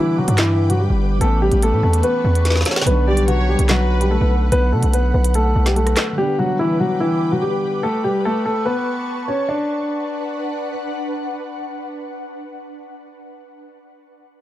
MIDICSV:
0, 0, Header, 1, 7, 480
1, 0, Start_track
1, 0, Key_signature, 2, "minor"
1, 0, Tempo, 413793
1, 1405, Time_signature, 4, 2, 24, 8
1, 16719, End_track
2, 0, Start_track
2, 0, Title_t, "Ambient pad"
2, 0, Program_c, 0, 92
2, 0, Note_on_c, 0, 71, 90
2, 0, Note_on_c, 0, 79, 81
2, 0, Note_on_c, 0, 86, 95
2, 1359, Note_off_c, 0, 86, 0
2, 1385, Note_off_c, 0, 79, 0
2, 1403, Note_on_c, 0, 81, 80
2, 1403, Note_on_c, 0, 85, 98
2, 3304, Note_off_c, 0, 85, 0
2, 3305, Note_off_c, 0, 81, 0
2, 3325, Note_on_c, 0, 78, 80
2, 7119, Note_off_c, 0, 71, 0
2, 7126, Note_off_c, 0, 78, 0
2, 7165, Note_on_c, 0, 71, 87
2, 7166, Note_on_c, 0, 79, 81
2, 7166, Note_on_c, 0, 86, 96
2, 9066, Note_off_c, 0, 79, 0
2, 9066, Note_off_c, 0, 86, 0
2, 9085, Note_on_c, 0, 81, 81
2, 9085, Note_on_c, 0, 85, 99
2, 10967, Note_off_c, 0, 71, 0
2, 10985, Note_off_c, 0, 81, 0
2, 10985, Note_off_c, 0, 85, 0
2, 11004, Note_on_c, 0, 62, 87
2, 11004, Note_on_c, 0, 71, 78
2, 11004, Note_on_c, 0, 78, 93
2, 14721, Note_off_c, 0, 62, 0
2, 14721, Note_off_c, 0, 78, 0
2, 14722, Note_off_c, 0, 71, 0
2, 16719, End_track
3, 0, Start_track
3, 0, Title_t, "Violin section"
3, 0, Program_c, 1, 48
3, 3565, Note_on_c, 1, 74, 80
3, 3793, Note_off_c, 1, 74, 0
3, 3804, Note_on_c, 1, 73, 96
3, 4256, Note_off_c, 1, 73, 0
3, 4285, Note_on_c, 1, 71, 93
3, 5199, Note_off_c, 1, 71, 0
3, 16719, End_track
4, 0, Start_track
4, 0, Title_t, "Grand piano"
4, 0, Program_c, 2, 0
4, 0, Note_on_c, 2, 52, 74
4, 0, Note_on_c, 2, 64, 87
4, 171, Note_off_c, 2, 64, 0
4, 176, Note_off_c, 2, 52, 0
4, 206, Note_on_c, 2, 66, 85
4, 215, Note_on_c, 2, 54, 71
4, 409, Note_off_c, 2, 66, 0
4, 415, Note_off_c, 2, 54, 0
4, 445, Note_on_c, 2, 64, 88
4, 454, Note_on_c, 2, 52, 74
4, 783, Note_off_c, 2, 64, 0
4, 788, Note_off_c, 2, 52, 0
4, 809, Note_on_c, 2, 66, 85
4, 818, Note_on_c, 2, 54, 66
4, 909, Note_off_c, 2, 66, 0
4, 915, Note_off_c, 2, 54, 0
4, 926, Note_on_c, 2, 67, 75
4, 934, Note_on_c, 2, 55, 57
4, 1377, Note_off_c, 2, 67, 0
4, 1381, Note_off_c, 2, 55, 0
4, 1403, Note_on_c, 2, 69, 99
4, 1413, Note_on_c, 2, 57, 72
4, 1608, Note_off_c, 2, 69, 0
4, 1614, Note_off_c, 2, 57, 0
4, 1647, Note_on_c, 2, 67, 92
4, 1656, Note_on_c, 2, 55, 68
4, 1850, Note_off_c, 2, 67, 0
4, 1855, Note_off_c, 2, 55, 0
4, 1892, Note_on_c, 2, 69, 97
4, 1901, Note_on_c, 2, 57, 76
4, 2093, Note_off_c, 2, 69, 0
4, 2098, Note_off_c, 2, 57, 0
4, 2126, Note_on_c, 2, 69, 90
4, 2135, Note_on_c, 2, 57, 63
4, 2330, Note_off_c, 2, 69, 0
4, 2335, Note_off_c, 2, 57, 0
4, 2363, Note_on_c, 2, 71, 93
4, 2372, Note_on_c, 2, 59, 76
4, 3040, Note_off_c, 2, 71, 0
4, 3046, Note_off_c, 2, 59, 0
4, 3085, Note_on_c, 2, 73, 77
4, 3095, Note_on_c, 2, 61, 63
4, 3289, Note_off_c, 2, 73, 0
4, 3295, Note_off_c, 2, 61, 0
4, 3326, Note_on_c, 2, 71, 86
4, 3336, Note_on_c, 2, 59, 70
4, 3530, Note_off_c, 2, 71, 0
4, 3535, Note_off_c, 2, 59, 0
4, 3570, Note_on_c, 2, 67, 93
4, 3579, Note_on_c, 2, 55, 71
4, 3772, Note_off_c, 2, 67, 0
4, 3777, Note_off_c, 2, 55, 0
4, 3803, Note_on_c, 2, 66, 90
4, 3812, Note_on_c, 2, 54, 68
4, 4008, Note_off_c, 2, 66, 0
4, 4013, Note_off_c, 2, 54, 0
4, 4048, Note_on_c, 2, 67, 79
4, 4056, Note_on_c, 2, 55, 61
4, 4250, Note_off_c, 2, 67, 0
4, 4255, Note_off_c, 2, 55, 0
4, 4289, Note_on_c, 2, 66, 92
4, 4298, Note_on_c, 2, 54, 69
4, 4625, Note_off_c, 2, 66, 0
4, 4630, Note_off_c, 2, 54, 0
4, 4648, Note_on_c, 2, 67, 70
4, 4658, Note_on_c, 2, 55, 61
4, 4749, Note_off_c, 2, 67, 0
4, 4754, Note_off_c, 2, 55, 0
4, 4767, Note_on_c, 2, 69, 82
4, 4776, Note_on_c, 2, 57, 61
4, 5217, Note_off_c, 2, 69, 0
4, 5222, Note_off_c, 2, 57, 0
4, 5244, Note_on_c, 2, 71, 103
4, 5254, Note_on_c, 2, 59, 70
4, 5448, Note_off_c, 2, 71, 0
4, 5454, Note_off_c, 2, 59, 0
4, 5480, Note_on_c, 2, 69, 83
4, 5489, Note_on_c, 2, 57, 62
4, 5686, Note_off_c, 2, 69, 0
4, 5691, Note_off_c, 2, 57, 0
4, 5726, Note_on_c, 2, 71, 85
4, 5735, Note_on_c, 2, 59, 65
4, 5930, Note_off_c, 2, 71, 0
4, 5935, Note_off_c, 2, 59, 0
4, 5962, Note_on_c, 2, 71, 77
4, 5971, Note_on_c, 2, 59, 60
4, 6167, Note_off_c, 2, 71, 0
4, 6173, Note_off_c, 2, 59, 0
4, 6208, Note_on_c, 2, 69, 89
4, 6217, Note_on_c, 2, 57, 64
4, 6545, Note_off_c, 2, 69, 0
4, 6550, Note_off_c, 2, 57, 0
4, 6569, Note_on_c, 2, 67, 76
4, 6578, Note_on_c, 2, 55, 56
4, 6669, Note_off_c, 2, 67, 0
4, 6674, Note_off_c, 2, 55, 0
4, 6681, Note_on_c, 2, 69, 83
4, 6690, Note_on_c, 2, 57, 69
4, 7134, Note_off_c, 2, 69, 0
4, 7139, Note_off_c, 2, 57, 0
4, 7167, Note_on_c, 2, 67, 96
4, 7177, Note_on_c, 2, 55, 69
4, 7370, Note_off_c, 2, 67, 0
4, 7376, Note_off_c, 2, 55, 0
4, 7408, Note_on_c, 2, 66, 90
4, 7417, Note_on_c, 2, 54, 75
4, 7610, Note_off_c, 2, 66, 0
4, 7616, Note_off_c, 2, 54, 0
4, 7648, Note_on_c, 2, 64, 88
4, 7657, Note_on_c, 2, 52, 74
4, 7851, Note_off_c, 2, 64, 0
4, 7856, Note_off_c, 2, 52, 0
4, 7886, Note_on_c, 2, 66, 89
4, 7895, Note_on_c, 2, 54, 72
4, 8089, Note_off_c, 2, 66, 0
4, 8095, Note_off_c, 2, 54, 0
4, 8125, Note_on_c, 2, 64, 89
4, 8133, Note_on_c, 2, 52, 76
4, 8463, Note_off_c, 2, 64, 0
4, 8467, Note_off_c, 2, 52, 0
4, 8489, Note_on_c, 2, 66, 84
4, 8499, Note_on_c, 2, 54, 68
4, 8589, Note_off_c, 2, 66, 0
4, 8595, Note_off_c, 2, 54, 0
4, 8606, Note_on_c, 2, 67, 79
4, 8615, Note_on_c, 2, 55, 58
4, 9057, Note_off_c, 2, 67, 0
4, 9061, Note_off_c, 2, 55, 0
4, 9085, Note_on_c, 2, 69, 99
4, 9095, Note_on_c, 2, 57, 70
4, 9289, Note_off_c, 2, 69, 0
4, 9294, Note_off_c, 2, 57, 0
4, 9329, Note_on_c, 2, 67, 89
4, 9337, Note_on_c, 2, 55, 68
4, 9531, Note_off_c, 2, 67, 0
4, 9536, Note_off_c, 2, 55, 0
4, 9574, Note_on_c, 2, 69, 100
4, 9584, Note_on_c, 2, 57, 79
4, 9774, Note_off_c, 2, 69, 0
4, 9780, Note_off_c, 2, 57, 0
4, 9808, Note_on_c, 2, 69, 87
4, 9817, Note_on_c, 2, 57, 62
4, 10010, Note_off_c, 2, 69, 0
4, 10016, Note_off_c, 2, 57, 0
4, 10041, Note_on_c, 2, 71, 91
4, 10050, Note_on_c, 2, 59, 77
4, 10720, Note_off_c, 2, 71, 0
4, 10724, Note_off_c, 2, 59, 0
4, 10765, Note_on_c, 2, 73, 81
4, 10774, Note_on_c, 2, 61, 61
4, 10969, Note_off_c, 2, 73, 0
4, 10974, Note_off_c, 2, 61, 0
4, 11004, Note_on_c, 2, 62, 88
4, 12398, Note_off_c, 2, 62, 0
4, 16719, End_track
5, 0, Start_track
5, 0, Title_t, "Tine electric piano"
5, 0, Program_c, 3, 4
5, 0, Control_c, 3, 64, 127
5, 0, Note_on_c, 3, 50, 71
5, 0, Note_on_c, 3, 55, 56
5, 0, Note_on_c, 3, 59, 58
5, 0, Note_on_c, 3, 62, 71
5, 1339, Note_off_c, 3, 50, 0
5, 1352, Note_on_c, 3, 52, 62
5, 1357, Note_off_c, 3, 55, 0
5, 1375, Note_off_c, 3, 59, 0
5, 1388, Note_on_c, 3, 57, 66
5, 1394, Note_off_c, 3, 62, 0
5, 1419, Control_c, 3, 64, 0
5, 1424, Note_on_c, 3, 59, 65
5, 1460, Note_on_c, 3, 61, 78
5, 1610, Control_c, 3, 64, 127
5, 3259, Note_off_c, 3, 52, 0
5, 3273, Note_on_c, 3, 50, 66
5, 3278, Note_off_c, 3, 57, 0
5, 3296, Note_off_c, 3, 59, 0
5, 3309, Note_on_c, 3, 54, 61
5, 3314, Note_off_c, 3, 61, 0
5, 3342, Control_c, 3, 64, 0
5, 3345, Note_on_c, 3, 59, 63
5, 3381, Note_on_c, 3, 62, 80
5, 3569, Control_c, 3, 64, 127
5, 7092, Note_off_c, 3, 50, 0
5, 7108, Note_on_c, 3, 50, 71
5, 7110, Note_off_c, 3, 54, 0
5, 7128, Note_off_c, 3, 59, 0
5, 7144, Note_on_c, 3, 55, 58
5, 7146, Note_off_c, 3, 62, 0
5, 7179, Control_c, 3, 64, 0
5, 7180, Note_on_c, 3, 59, 58
5, 7216, Note_on_c, 3, 62, 68
5, 7403, Control_c, 3, 64, 127
5, 9017, Note_off_c, 3, 50, 0
5, 9036, Note_off_c, 3, 55, 0
5, 9054, Note_off_c, 3, 59, 0
5, 9073, Note_off_c, 3, 62, 0
5, 9102, Control_c, 3, 64, 0
5, 16719, End_track
6, 0, Start_track
6, 0, Title_t, "808-style bass"
6, 0, Program_c, 4, 38
6, 324, Note_on_c, 4, 43, 103
6, 1016, Note_off_c, 4, 43, 0
6, 1044, Note_on_c, 4, 31, 102
6, 1390, Note_off_c, 4, 31, 0
6, 1405, Note_on_c, 4, 33, 112
6, 1750, Note_off_c, 4, 33, 0
6, 1764, Note_on_c, 4, 33, 106
6, 2005, Note_on_c, 4, 45, 98
6, 2022, Note_off_c, 4, 33, 0
6, 2119, Note_off_c, 4, 45, 0
6, 2125, Note_on_c, 4, 40, 110
6, 2355, Note_off_c, 4, 40, 0
6, 2605, Note_on_c, 4, 40, 110
6, 3066, Note_off_c, 4, 40, 0
6, 3325, Note_on_c, 4, 35, 113
6, 4131, Note_off_c, 4, 35, 0
6, 4165, Note_on_c, 4, 35, 104
6, 4856, Note_off_c, 4, 35, 0
6, 4885, Note_on_c, 4, 35, 105
6, 5230, Note_off_c, 4, 35, 0
6, 5245, Note_on_c, 4, 35, 108
6, 5486, Note_on_c, 4, 47, 100
6, 5503, Note_off_c, 4, 35, 0
6, 5599, Note_off_c, 4, 47, 0
6, 5605, Note_on_c, 4, 35, 102
6, 5950, Note_off_c, 4, 35, 0
6, 5966, Note_on_c, 4, 35, 111
6, 6426, Note_off_c, 4, 35, 0
6, 6446, Note_on_c, 4, 35, 107
6, 6906, Note_off_c, 4, 35, 0
6, 16719, End_track
7, 0, Start_track
7, 0, Title_t, "Drums"
7, 324, Note_on_c, 9, 42, 86
7, 438, Note_off_c, 9, 42, 0
7, 438, Note_on_c, 9, 42, 75
7, 445, Note_on_c, 9, 38, 112
7, 446, Note_on_c, 9, 39, 88
7, 554, Note_off_c, 9, 42, 0
7, 561, Note_off_c, 9, 38, 0
7, 562, Note_off_c, 9, 39, 0
7, 810, Note_on_c, 9, 42, 74
7, 926, Note_off_c, 9, 42, 0
7, 1404, Note_on_c, 9, 42, 84
7, 1520, Note_off_c, 9, 42, 0
7, 1758, Note_on_c, 9, 42, 80
7, 1874, Note_off_c, 9, 42, 0
7, 1885, Note_on_c, 9, 42, 83
7, 2001, Note_off_c, 9, 42, 0
7, 2244, Note_on_c, 9, 42, 87
7, 2358, Note_off_c, 9, 42, 0
7, 2358, Note_on_c, 9, 42, 73
7, 2474, Note_off_c, 9, 42, 0
7, 2731, Note_on_c, 9, 42, 73
7, 2844, Note_off_c, 9, 42, 0
7, 2844, Note_on_c, 9, 42, 78
7, 2845, Note_on_c, 9, 38, 66
7, 2905, Note_off_c, 9, 38, 0
7, 2905, Note_on_c, 9, 38, 64
7, 2960, Note_off_c, 9, 42, 0
7, 2965, Note_off_c, 9, 38, 0
7, 2965, Note_on_c, 9, 38, 78
7, 3025, Note_off_c, 9, 38, 0
7, 3025, Note_on_c, 9, 38, 74
7, 3078, Note_on_c, 9, 42, 80
7, 3085, Note_off_c, 9, 38, 0
7, 3085, Note_on_c, 9, 38, 92
7, 3145, Note_off_c, 9, 38, 0
7, 3145, Note_on_c, 9, 38, 86
7, 3194, Note_off_c, 9, 42, 0
7, 3205, Note_off_c, 9, 38, 0
7, 3205, Note_on_c, 9, 38, 118
7, 3266, Note_off_c, 9, 38, 0
7, 3266, Note_on_c, 9, 38, 107
7, 3325, Note_on_c, 9, 42, 88
7, 3382, Note_off_c, 9, 38, 0
7, 3441, Note_off_c, 9, 42, 0
7, 3678, Note_on_c, 9, 42, 80
7, 3794, Note_off_c, 9, 42, 0
7, 3805, Note_on_c, 9, 42, 82
7, 3921, Note_off_c, 9, 42, 0
7, 4164, Note_on_c, 9, 42, 84
7, 4278, Note_off_c, 9, 42, 0
7, 4278, Note_on_c, 9, 42, 73
7, 4285, Note_on_c, 9, 38, 111
7, 4286, Note_on_c, 9, 39, 92
7, 4394, Note_off_c, 9, 42, 0
7, 4401, Note_off_c, 9, 38, 0
7, 4402, Note_off_c, 9, 39, 0
7, 4650, Note_on_c, 9, 42, 73
7, 4766, Note_off_c, 9, 42, 0
7, 5244, Note_on_c, 9, 42, 86
7, 5360, Note_off_c, 9, 42, 0
7, 5598, Note_on_c, 9, 42, 81
7, 5714, Note_off_c, 9, 42, 0
7, 5724, Note_on_c, 9, 42, 86
7, 5840, Note_off_c, 9, 42, 0
7, 6084, Note_on_c, 9, 42, 89
7, 6198, Note_off_c, 9, 42, 0
7, 6198, Note_on_c, 9, 42, 73
7, 6314, Note_off_c, 9, 42, 0
7, 6565, Note_on_c, 9, 38, 71
7, 6571, Note_on_c, 9, 42, 77
7, 6681, Note_off_c, 9, 38, 0
7, 6686, Note_off_c, 9, 42, 0
7, 6686, Note_on_c, 9, 42, 49
7, 6802, Note_off_c, 9, 42, 0
7, 6804, Note_on_c, 9, 37, 70
7, 6805, Note_on_c, 9, 42, 78
7, 6918, Note_off_c, 9, 42, 0
7, 6918, Note_on_c, 9, 42, 80
7, 6920, Note_off_c, 9, 37, 0
7, 6925, Note_on_c, 9, 37, 91
7, 6925, Note_on_c, 9, 38, 107
7, 6926, Note_on_c, 9, 39, 84
7, 7034, Note_off_c, 9, 42, 0
7, 7041, Note_off_c, 9, 37, 0
7, 7041, Note_off_c, 9, 38, 0
7, 7042, Note_off_c, 9, 39, 0
7, 16719, End_track
0, 0, End_of_file